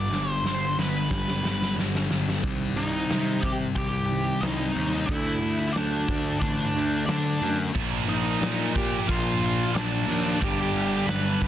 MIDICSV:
0, 0, Header, 1, 6, 480
1, 0, Start_track
1, 0, Key_signature, -3, "minor"
1, 0, Tempo, 663717
1, 1767, Time_signature, 4, 2, 24, 8
1, 8299, End_track
2, 0, Start_track
2, 0, Title_t, "Lead electric guitar"
2, 0, Program_c, 0, 29
2, 0, Note_on_c, 0, 74, 82
2, 225, Note_off_c, 0, 74, 0
2, 225, Note_on_c, 0, 72, 82
2, 338, Note_off_c, 0, 72, 0
2, 338, Note_on_c, 0, 72, 72
2, 568, Note_off_c, 0, 72, 0
2, 571, Note_on_c, 0, 71, 72
2, 1260, Note_off_c, 0, 71, 0
2, 2002, Note_on_c, 0, 63, 64
2, 2003, Note_on_c, 0, 75, 80
2, 2455, Note_off_c, 0, 63, 0
2, 2474, Note_on_c, 0, 79, 93
2, 2489, Note_on_c, 0, 67, 74
2, 2497, Note_off_c, 0, 75, 0
2, 2540, Note_off_c, 0, 79, 0
2, 2553, Note_off_c, 0, 67, 0
2, 2717, Note_on_c, 0, 79, 97
2, 2732, Note_on_c, 0, 67, 71
2, 3180, Note_off_c, 0, 67, 0
2, 3189, Note_on_c, 0, 75, 85
2, 3215, Note_on_c, 0, 63, 66
2, 3216, Note_off_c, 0, 79, 0
2, 3659, Note_on_c, 0, 76, 85
2, 3661, Note_off_c, 0, 63, 0
2, 3690, Note_on_c, 0, 64, 71
2, 3691, Note_off_c, 0, 75, 0
2, 4123, Note_off_c, 0, 76, 0
2, 4138, Note_off_c, 0, 64, 0
2, 4141, Note_on_c, 0, 74, 80
2, 4175, Note_on_c, 0, 62, 61
2, 4617, Note_off_c, 0, 74, 0
2, 4621, Note_off_c, 0, 62, 0
2, 4625, Note_on_c, 0, 74, 81
2, 4641, Note_on_c, 0, 62, 62
2, 5094, Note_off_c, 0, 62, 0
2, 5098, Note_off_c, 0, 74, 0
2, 5107, Note_on_c, 0, 74, 75
2, 5126, Note_on_c, 0, 62, 55
2, 5450, Note_off_c, 0, 74, 0
2, 5460, Note_off_c, 0, 62, 0
2, 5851, Note_on_c, 0, 75, 77
2, 5857, Note_on_c, 0, 63, 58
2, 6299, Note_off_c, 0, 75, 0
2, 6302, Note_off_c, 0, 63, 0
2, 6329, Note_on_c, 0, 79, 84
2, 6340, Note_on_c, 0, 67, 60
2, 6556, Note_off_c, 0, 67, 0
2, 6565, Note_off_c, 0, 79, 0
2, 6568, Note_on_c, 0, 77, 85
2, 6585, Note_on_c, 0, 65, 67
2, 7027, Note_off_c, 0, 65, 0
2, 7049, Note_on_c, 0, 74, 82
2, 7062, Note_off_c, 0, 77, 0
2, 7065, Note_on_c, 0, 62, 67
2, 7508, Note_off_c, 0, 62, 0
2, 7526, Note_on_c, 0, 79, 94
2, 7543, Note_off_c, 0, 74, 0
2, 7550, Note_on_c, 0, 67, 71
2, 7991, Note_off_c, 0, 67, 0
2, 8002, Note_on_c, 0, 83, 99
2, 8023, Note_off_c, 0, 79, 0
2, 8024, Note_on_c, 0, 71, 73
2, 8299, Note_off_c, 0, 71, 0
2, 8299, Note_off_c, 0, 83, 0
2, 8299, End_track
3, 0, Start_track
3, 0, Title_t, "Clean electric guitar"
3, 0, Program_c, 1, 27
3, 0, Note_on_c, 1, 43, 70
3, 84, Note_on_c, 1, 50, 62
3, 316, Note_on_c, 1, 55, 67
3, 558, Note_on_c, 1, 62, 62
3, 797, Note_on_c, 1, 67, 72
3, 1032, Note_on_c, 1, 59, 60
3, 1044, Note_off_c, 1, 43, 0
3, 1267, Note_off_c, 1, 55, 0
3, 1276, Note_on_c, 1, 55, 61
3, 1286, Note_off_c, 1, 50, 0
3, 1509, Note_off_c, 1, 59, 0
3, 1518, Note_on_c, 1, 59, 63
3, 1752, Note_off_c, 1, 55, 0
3, 1753, Note_on_c, 1, 48, 84
3, 1754, Note_on_c, 1, 51, 92
3, 1757, Note_off_c, 1, 59, 0
3, 1760, Note_on_c, 1, 55, 95
3, 1762, Note_off_c, 1, 62, 0
3, 1762, Note_off_c, 1, 67, 0
3, 1985, Note_off_c, 1, 48, 0
3, 1986, Note_off_c, 1, 51, 0
3, 1989, Note_off_c, 1, 55, 0
3, 1999, Note_on_c, 1, 48, 66
3, 2003, Note_on_c, 1, 51, 68
3, 2219, Note_off_c, 1, 48, 0
3, 2221, Note_off_c, 1, 51, 0
3, 2235, Note_on_c, 1, 48, 74
3, 2240, Note_on_c, 1, 51, 80
3, 2243, Note_on_c, 1, 55, 90
3, 2466, Note_off_c, 1, 48, 0
3, 2469, Note_off_c, 1, 51, 0
3, 2470, Note_off_c, 1, 55, 0
3, 2483, Note_on_c, 1, 48, 61
3, 2484, Note_on_c, 1, 51, 73
3, 2700, Note_off_c, 1, 48, 0
3, 2701, Note_off_c, 1, 51, 0
3, 2728, Note_on_c, 1, 48, 76
3, 2729, Note_on_c, 1, 51, 74
3, 2943, Note_off_c, 1, 48, 0
3, 2943, Note_off_c, 1, 51, 0
3, 2960, Note_on_c, 1, 48, 86
3, 2964, Note_on_c, 1, 51, 83
3, 2969, Note_on_c, 1, 55, 96
3, 3188, Note_off_c, 1, 48, 0
3, 3190, Note_off_c, 1, 51, 0
3, 3193, Note_off_c, 1, 55, 0
3, 3447, Note_on_c, 1, 48, 63
3, 3450, Note_on_c, 1, 51, 74
3, 3662, Note_off_c, 1, 48, 0
3, 3664, Note_off_c, 1, 51, 0
3, 3684, Note_on_c, 1, 50, 81
3, 3691, Note_on_c, 1, 57, 90
3, 3691, Note_on_c, 1, 62, 98
3, 3910, Note_off_c, 1, 50, 0
3, 3913, Note_off_c, 1, 57, 0
3, 3913, Note_off_c, 1, 62, 0
3, 3922, Note_on_c, 1, 57, 78
3, 3923, Note_on_c, 1, 50, 65
3, 4139, Note_off_c, 1, 57, 0
3, 4140, Note_off_c, 1, 50, 0
3, 4163, Note_on_c, 1, 50, 81
3, 4168, Note_on_c, 1, 57, 91
3, 4171, Note_on_c, 1, 62, 101
3, 4389, Note_off_c, 1, 50, 0
3, 4391, Note_off_c, 1, 57, 0
3, 4393, Note_off_c, 1, 62, 0
3, 4401, Note_on_c, 1, 50, 68
3, 4619, Note_off_c, 1, 50, 0
3, 4642, Note_on_c, 1, 50, 67
3, 4646, Note_on_c, 1, 57, 79
3, 4859, Note_off_c, 1, 50, 0
3, 4861, Note_off_c, 1, 57, 0
3, 4881, Note_on_c, 1, 50, 76
3, 4885, Note_on_c, 1, 57, 93
3, 4891, Note_on_c, 1, 62, 89
3, 5108, Note_off_c, 1, 50, 0
3, 5110, Note_off_c, 1, 57, 0
3, 5113, Note_off_c, 1, 62, 0
3, 5127, Note_on_c, 1, 50, 67
3, 5342, Note_off_c, 1, 50, 0
3, 5375, Note_on_c, 1, 50, 63
3, 5378, Note_on_c, 1, 57, 69
3, 5585, Note_off_c, 1, 50, 0
3, 5587, Note_off_c, 1, 57, 0
3, 8299, End_track
4, 0, Start_track
4, 0, Title_t, "Distorted electric guitar"
4, 0, Program_c, 2, 30
4, 0, Note_on_c, 2, 55, 97
4, 74, Note_on_c, 2, 43, 77
4, 79, Note_off_c, 2, 55, 0
4, 81, Note_on_c, 2, 50, 74
4, 88, Note_on_c, 2, 55, 81
4, 303, Note_off_c, 2, 43, 0
4, 309, Note_off_c, 2, 50, 0
4, 312, Note_off_c, 2, 55, 0
4, 312, Note_on_c, 2, 43, 84
4, 318, Note_on_c, 2, 50, 97
4, 321, Note_on_c, 2, 55, 97
4, 549, Note_off_c, 2, 43, 0
4, 550, Note_off_c, 2, 50, 0
4, 554, Note_off_c, 2, 55, 0
4, 558, Note_on_c, 2, 43, 78
4, 559, Note_on_c, 2, 50, 78
4, 562, Note_on_c, 2, 55, 78
4, 781, Note_off_c, 2, 43, 0
4, 788, Note_off_c, 2, 50, 0
4, 789, Note_on_c, 2, 43, 82
4, 796, Note_off_c, 2, 55, 0
4, 797, Note_on_c, 2, 50, 101
4, 805, Note_on_c, 2, 55, 92
4, 1032, Note_off_c, 2, 43, 0
4, 1038, Note_off_c, 2, 50, 0
4, 1041, Note_on_c, 2, 43, 76
4, 1047, Note_off_c, 2, 55, 0
4, 1047, Note_on_c, 2, 50, 81
4, 1056, Note_on_c, 2, 55, 88
4, 1270, Note_off_c, 2, 43, 0
4, 1275, Note_off_c, 2, 50, 0
4, 1279, Note_off_c, 2, 55, 0
4, 1279, Note_on_c, 2, 43, 85
4, 1283, Note_on_c, 2, 50, 87
4, 1287, Note_on_c, 2, 55, 92
4, 1514, Note_off_c, 2, 43, 0
4, 1520, Note_off_c, 2, 50, 0
4, 1522, Note_on_c, 2, 43, 76
4, 1526, Note_off_c, 2, 55, 0
4, 1528, Note_on_c, 2, 50, 81
4, 1535, Note_on_c, 2, 55, 80
4, 1750, Note_off_c, 2, 43, 0
4, 1753, Note_off_c, 2, 50, 0
4, 1757, Note_off_c, 2, 55, 0
4, 1757, Note_on_c, 2, 48, 78
4, 1770, Note_on_c, 2, 55, 83
4, 1786, Note_on_c, 2, 60, 91
4, 3419, Note_off_c, 2, 60, 0
4, 3426, Note_off_c, 2, 48, 0
4, 3427, Note_on_c, 2, 60, 77
4, 3433, Note_off_c, 2, 55, 0
4, 3444, Note_on_c, 2, 55, 72
4, 3450, Note_on_c, 2, 48, 61
4, 3662, Note_off_c, 2, 60, 0
4, 3665, Note_off_c, 2, 48, 0
4, 3668, Note_on_c, 2, 50, 84
4, 3670, Note_off_c, 2, 55, 0
4, 3677, Note_on_c, 2, 57, 88
4, 3688, Note_on_c, 2, 62, 90
4, 5341, Note_off_c, 2, 50, 0
4, 5346, Note_off_c, 2, 57, 0
4, 5361, Note_off_c, 2, 62, 0
4, 5364, Note_on_c, 2, 62, 80
4, 5380, Note_on_c, 2, 57, 79
4, 5387, Note_on_c, 2, 50, 69
4, 5590, Note_off_c, 2, 50, 0
4, 5593, Note_on_c, 2, 46, 88
4, 5598, Note_off_c, 2, 57, 0
4, 5608, Note_on_c, 2, 53, 93
4, 5616, Note_off_c, 2, 62, 0
4, 5619, Note_on_c, 2, 58, 97
4, 7267, Note_off_c, 2, 46, 0
4, 7271, Note_off_c, 2, 58, 0
4, 7274, Note_off_c, 2, 53, 0
4, 7279, Note_on_c, 2, 58, 82
4, 7300, Note_on_c, 2, 53, 69
4, 7310, Note_on_c, 2, 46, 71
4, 7509, Note_off_c, 2, 58, 0
4, 7515, Note_on_c, 2, 43, 79
4, 7520, Note_off_c, 2, 53, 0
4, 7524, Note_off_c, 2, 46, 0
4, 7533, Note_on_c, 2, 50, 98
4, 7544, Note_on_c, 2, 55, 97
4, 8299, Note_off_c, 2, 43, 0
4, 8299, Note_off_c, 2, 50, 0
4, 8299, Note_off_c, 2, 55, 0
4, 8299, End_track
5, 0, Start_track
5, 0, Title_t, "Picked electric bass"
5, 0, Program_c, 3, 34
5, 74, Note_on_c, 3, 31, 82
5, 302, Note_off_c, 3, 31, 0
5, 314, Note_on_c, 3, 31, 81
5, 542, Note_off_c, 3, 31, 0
5, 558, Note_on_c, 3, 31, 78
5, 784, Note_off_c, 3, 31, 0
5, 799, Note_on_c, 3, 31, 81
5, 1024, Note_off_c, 3, 31, 0
5, 1034, Note_on_c, 3, 31, 75
5, 1262, Note_off_c, 3, 31, 0
5, 1273, Note_on_c, 3, 31, 81
5, 1501, Note_off_c, 3, 31, 0
5, 1516, Note_on_c, 3, 31, 74
5, 1743, Note_off_c, 3, 31, 0
5, 1759, Note_on_c, 3, 36, 84
5, 1959, Note_off_c, 3, 36, 0
5, 1996, Note_on_c, 3, 36, 83
5, 2197, Note_off_c, 3, 36, 0
5, 2235, Note_on_c, 3, 48, 85
5, 2632, Note_off_c, 3, 48, 0
5, 2719, Note_on_c, 3, 36, 87
5, 3114, Note_off_c, 3, 36, 0
5, 3197, Note_on_c, 3, 36, 83
5, 3397, Note_off_c, 3, 36, 0
5, 3440, Note_on_c, 3, 39, 79
5, 3638, Note_off_c, 3, 39, 0
5, 3680, Note_on_c, 3, 38, 82
5, 3879, Note_off_c, 3, 38, 0
5, 3910, Note_on_c, 3, 38, 80
5, 4112, Note_off_c, 3, 38, 0
5, 4162, Note_on_c, 3, 38, 85
5, 4359, Note_off_c, 3, 38, 0
5, 4402, Note_on_c, 3, 38, 80
5, 4599, Note_off_c, 3, 38, 0
5, 4640, Note_on_c, 3, 33, 89
5, 4838, Note_off_c, 3, 33, 0
5, 4885, Note_on_c, 3, 38, 81
5, 5081, Note_off_c, 3, 38, 0
5, 5118, Note_on_c, 3, 50, 83
5, 5317, Note_off_c, 3, 50, 0
5, 5361, Note_on_c, 3, 42, 79
5, 5559, Note_off_c, 3, 42, 0
5, 5610, Note_on_c, 3, 34, 88
5, 5804, Note_off_c, 3, 34, 0
5, 5843, Note_on_c, 3, 34, 82
5, 6040, Note_off_c, 3, 34, 0
5, 6080, Note_on_c, 3, 46, 86
5, 6475, Note_off_c, 3, 46, 0
5, 6573, Note_on_c, 3, 34, 87
5, 6964, Note_off_c, 3, 34, 0
5, 7051, Note_on_c, 3, 34, 88
5, 7246, Note_off_c, 3, 34, 0
5, 7286, Note_on_c, 3, 39, 79
5, 7484, Note_off_c, 3, 39, 0
5, 7532, Note_on_c, 3, 31, 95
5, 7727, Note_off_c, 3, 31, 0
5, 7765, Note_on_c, 3, 31, 88
5, 7964, Note_off_c, 3, 31, 0
5, 8005, Note_on_c, 3, 31, 85
5, 8204, Note_off_c, 3, 31, 0
5, 8256, Note_on_c, 3, 31, 87
5, 8299, Note_off_c, 3, 31, 0
5, 8299, End_track
6, 0, Start_track
6, 0, Title_t, "Drums"
6, 88, Note_on_c, 9, 38, 57
6, 160, Note_off_c, 9, 38, 0
6, 328, Note_on_c, 9, 38, 60
6, 401, Note_off_c, 9, 38, 0
6, 571, Note_on_c, 9, 38, 70
6, 643, Note_off_c, 9, 38, 0
6, 802, Note_on_c, 9, 36, 95
6, 803, Note_on_c, 9, 38, 70
6, 874, Note_off_c, 9, 36, 0
6, 875, Note_off_c, 9, 38, 0
6, 927, Note_on_c, 9, 38, 63
6, 999, Note_off_c, 9, 38, 0
6, 1050, Note_on_c, 9, 38, 75
6, 1123, Note_off_c, 9, 38, 0
6, 1172, Note_on_c, 9, 38, 64
6, 1244, Note_off_c, 9, 38, 0
6, 1294, Note_on_c, 9, 38, 79
6, 1367, Note_off_c, 9, 38, 0
6, 1411, Note_on_c, 9, 38, 70
6, 1483, Note_off_c, 9, 38, 0
6, 1523, Note_on_c, 9, 38, 87
6, 1595, Note_off_c, 9, 38, 0
6, 1653, Note_on_c, 9, 38, 78
6, 1725, Note_off_c, 9, 38, 0
6, 1762, Note_on_c, 9, 36, 106
6, 1762, Note_on_c, 9, 46, 47
6, 1834, Note_off_c, 9, 36, 0
6, 1834, Note_off_c, 9, 46, 0
6, 2239, Note_on_c, 9, 46, 50
6, 2246, Note_on_c, 9, 38, 96
6, 2311, Note_off_c, 9, 46, 0
6, 2318, Note_off_c, 9, 38, 0
6, 2480, Note_on_c, 9, 36, 79
6, 2552, Note_off_c, 9, 36, 0
6, 2715, Note_on_c, 9, 46, 50
6, 2719, Note_on_c, 9, 36, 81
6, 2787, Note_off_c, 9, 46, 0
6, 2791, Note_off_c, 9, 36, 0
6, 3198, Note_on_c, 9, 46, 54
6, 3205, Note_on_c, 9, 38, 109
6, 3270, Note_off_c, 9, 46, 0
6, 3277, Note_off_c, 9, 38, 0
6, 3678, Note_on_c, 9, 46, 56
6, 3679, Note_on_c, 9, 36, 110
6, 3751, Note_off_c, 9, 36, 0
6, 3751, Note_off_c, 9, 46, 0
6, 4158, Note_on_c, 9, 46, 51
6, 4166, Note_on_c, 9, 38, 98
6, 4231, Note_off_c, 9, 46, 0
6, 4238, Note_off_c, 9, 38, 0
6, 4400, Note_on_c, 9, 36, 84
6, 4472, Note_off_c, 9, 36, 0
6, 4632, Note_on_c, 9, 46, 58
6, 4639, Note_on_c, 9, 36, 81
6, 4704, Note_off_c, 9, 46, 0
6, 4712, Note_off_c, 9, 36, 0
6, 5119, Note_on_c, 9, 46, 54
6, 5126, Note_on_c, 9, 38, 105
6, 5191, Note_off_c, 9, 46, 0
6, 5199, Note_off_c, 9, 38, 0
6, 5607, Note_on_c, 9, 36, 104
6, 5607, Note_on_c, 9, 46, 54
6, 5680, Note_off_c, 9, 36, 0
6, 5680, Note_off_c, 9, 46, 0
6, 6090, Note_on_c, 9, 46, 52
6, 6097, Note_on_c, 9, 38, 99
6, 6162, Note_off_c, 9, 46, 0
6, 6169, Note_off_c, 9, 38, 0
6, 6333, Note_on_c, 9, 36, 86
6, 6405, Note_off_c, 9, 36, 0
6, 6574, Note_on_c, 9, 36, 84
6, 6577, Note_on_c, 9, 46, 52
6, 6646, Note_off_c, 9, 36, 0
6, 6649, Note_off_c, 9, 46, 0
6, 7053, Note_on_c, 9, 46, 56
6, 7060, Note_on_c, 9, 38, 108
6, 7125, Note_off_c, 9, 46, 0
6, 7132, Note_off_c, 9, 38, 0
6, 7533, Note_on_c, 9, 46, 54
6, 7536, Note_on_c, 9, 36, 109
6, 7605, Note_off_c, 9, 46, 0
6, 7608, Note_off_c, 9, 36, 0
6, 8013, Note_on_c, 9, 46, 56
6, 8020, Note_on_c, 9, 38, 105
6, 8086, Note_off_c, 9, 46, 0
6, 8093, Note_off_c, 9, 38, 0
6, 8256, Note_on_c, 9, 36, 83
6, 8299, Note_off_c, 9, 36, 0
6, 8299, End_track
0, 0, End_of_file